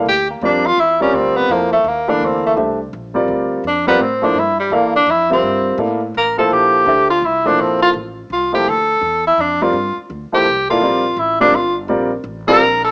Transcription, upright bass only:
X:1
M:3/4
L:1/8
Q:"Swing" 1/4=168
K:Gdor
V:1 name="Upright bass" clef=bass
D,,2 F,,2 E,,2 | D,,2 F,,2 _E,,2 | D,,2 C,,2 B,,,2 | D,,2 F,,2 A,,2 |
G,,2 E,,2 F,,2 | G,,2 A,,2 A,,,2 | B,,,2 D,,2 C,,2 | B,,,2 A,,,2 C,,2 |
D,,2 E,,2 F,,2 | G,, z D,, z C,,2 | B,,,2 A,,,2 G,,,2 | B,,,2 A,,,2 B,,,2 |]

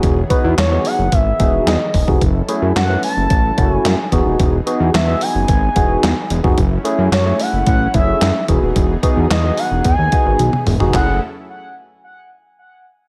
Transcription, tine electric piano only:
X:1
M:4/4
L:1/16
Q:1/4=110
K:F#dor
V:1 name="Tine electric piano"
[B,DFG] z [B,DFB]2 z [B,DFG]3 z2 [B,DFG]3 z2 [B,DFG] | z2 [A,CEG]2 z [A,CEB]3 z2 [A,CEF]3 z [B,DFG]2- | [B,DFG] z [B,DFG]2 z [B,DFG]3 z2 [B,DFG]3 z2 [B,DFG] | z2 [A,CEG]2 z [A,CEG]3 z2 [A,CEG]3 z [B,DFG]2- |
[B,DFG] z [B,DFG]2 z [B,DFG]3 z2 [B,DFG]3 z2 [B,DFG] | [A,CEG]2 z12 z2 |]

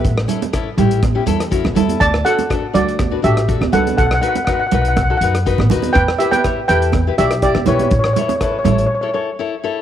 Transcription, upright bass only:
X:1
M:4/4
L:1/16
Q:1/4=122
K:Amix
V:1 name="Upright bass" clef=bass
A,,,2 z4 A,,,4 E,,3 F,,, E,,2 | D,,2 z4 D,,4 A,,,3 C,, C,,2 | B,,,2 z4 B,,,4 F,,3 A,,, ^D,,2 | E,,2 z4 E,,4 B,,,3 C,, B,,,2 |
A,,,2 z4 A,,,2 z8 |]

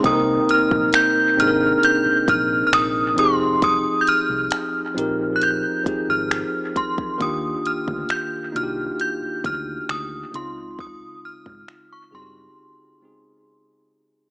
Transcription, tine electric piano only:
X:1
M:4/4
L:1/8
Q:1/4=67
K:Cm
V:1 name="Tine electric piano"
[C,B,CE=AB]3 [C,CDE_AB]3 z [F,CEGA]- | [F,CEGA]2 z [F,CEGB]2 [F,CEGA]3 | [E,B,DFG]3 [B,DEF^FG]3 z [_D,A,CE=F]- | [_D,A,CEF]2 z [D,CE^FGA]2 [D,A,CEA]3 |]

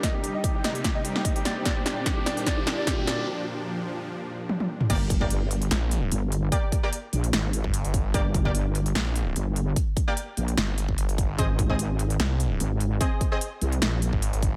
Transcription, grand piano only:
X:1
M:4/4
L:1/16
Q:"Swing 16ths" 1/4=148
K:Gphr
V:1 name="Grand piano"
e G G e G G e G G e G G e G d G | d G G d G G d G d G G d G G d G | z16 | z16 |
z16 | z16 | z16 | z16 |
z16 |]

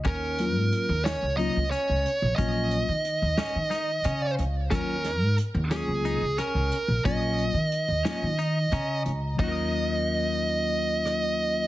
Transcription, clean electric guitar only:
X:1
M:7/8
L:1/8
Q:1/4=90
K:Ebm
V:1 name="Clean electric guitar"
D2 z D E D2 | D2 z D E D2 | D2 z D E D2 | D2 z D E D2 |
[EGBe]6- [EGBe] |]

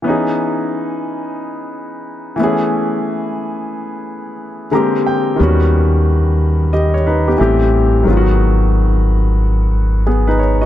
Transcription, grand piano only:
X:1
M:4/4
L:1/16
Q:"Swing 16ths" 1/4=90
K:C#m
V:1 name="Grand piano"
z16 | z12 ^a2 =g2 | z8 [=Gd] c [DB] [B,G]2 z3 | z12 [B,G] [DB] c [Fd] |]
V:2 name="Grand piano"
[E,B,CDG]12- [E,B,CDG]2 [E,A,B,CG]2- | [E,A,B,CG]12 [=D,G,^A,^B,=G]4 | [D,=G,B,CF]12 [E,G,A,=C=G]4 | [D,F,G,B,^EF]16 |]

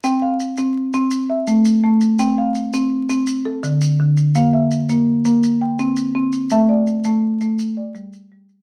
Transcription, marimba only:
X:1
M:12/8
L:1/8
Q:3/8=111
K:Cmix
V:1 name="Marimba"
g f3 z3 e3 z2 | g f3 z3 A3 z2 | f e3 z3 g3 z2 | e d3 z3 d3 z2 |]
V:2 name="Marimba"
C2 z C2 C z2 A,2 A,2 | C2 z C2 C z2 D,2 D,2 | B,2 z B,2 B, z2 C2 C2 | A,2 z A,2 A, z2 G,2 G,2 |]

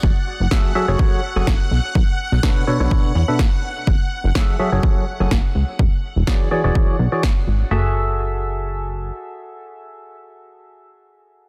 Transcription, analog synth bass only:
X:1
M:4/4
L:1/16
Q:"Swing 16ths" 1/4=125
K:F#m
V:1 name="Analog synth bass" clef=bass
F,,, z2 F,,, z3 F,,, z3 F,,, F,,, z B,,, z | B,,, z2 B,,, z3 B,,, z2 E,, z4 z | F,,, z2 F,,, z3 F,,, z3 F,,, F,,, z C,, z | E,,, z2 E,,, z3 E,,, z2 B,,, z3 G,,, z |
F,,,12 z4 | z16 |]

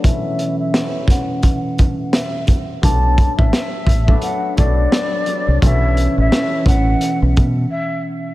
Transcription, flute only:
X:1
M:4/4
L:1/16
Q:"Swing 16ths" 1/4=86
K:Amix
V:1 name="Flute"
e3 e3 f3 z3 e2 z2 | a3 e4- e f2 d6 | e3 e3 f3 z3 e2 z2 |]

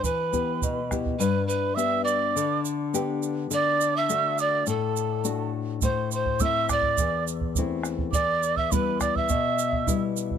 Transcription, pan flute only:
X:1
M:2/4
L:1/16
Q:1/4=104
K:G
V:1 name="Pan flute"
B6 z2 | B2 B2 e2 d2- | d2 z6 | d3 e3 d2 |
A6 z2 | c2 c2 e2 d2- | d2 z6 | d3 e B2 d e- |
e4- e z3 |]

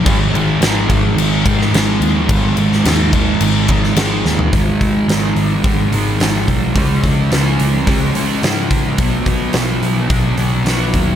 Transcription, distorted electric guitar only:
X:1
M:4/4
L:1/8
Q:1/4=108
K:G#dor
V:1 name="Distorted electric guitar" clef=bass
[G,,D,G,] [D,G,] [G,,D,G,] [D,G,]2 [D,G,] [G,,D,G,]2 | [G,,D,G,] [D,G,] [G,,D,G,] [D,G,]2 [D,G,] [G,,D,G,]2 | [G,,D,G,]2 [G,,D,G,]2 [G,,D,G,] [D,G,] [G,,D,G,]2 | [C,G,C]2 [C,G,C]2 [C,G,C] [G,C] [C,G,C]2 |
[B,,F,B,]2 [B,,F,B,]2 [B,,F,B,] [F,B,] [B,,F,B,]2 |]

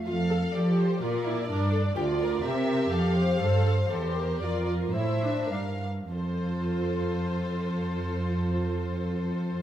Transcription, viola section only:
X:1
M:3/4
L:1/8
Q:1/4=116
K:F
V:1 name="Viola section"
F A G2 F E | D2 F2 G2- | G2 A A G2 | F2 E D D z |
F6- | F6 |]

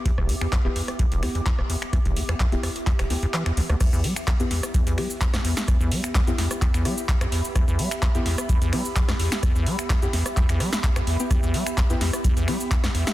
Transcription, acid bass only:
X:1
M:4/4
L:1/16
Q:1/4=128
K:Ephr
V:1 name="Acid bass" clef=bass
E,, E,,, F,, E,, F,, E,,, E,, z E,, E,,, F,, E,, F,, E,,, E,, z | E,, E,,, F,, E,, F,, E,,, E,, z E,, E,,, D,, E,, E, E,, D,, D,, | E,, E,, G, z E,, F,, E,, z E,, E,, G, z E,, F,, E,, z | E,, E,, G, z E,, F,, E,, z E,, E,, G, z E,, F,, E,, z |
E,, E,, G, z E,, F,, E,, z E,, E,, G, z E,, F,, E,, z | E,, E,, G, z E,, F,, E,, z E,, E,, G, z E,, F,, E,, z | E,, E,, G, z E,, F,, E,, z E,, E,, G, z E,, F,, E,, z |]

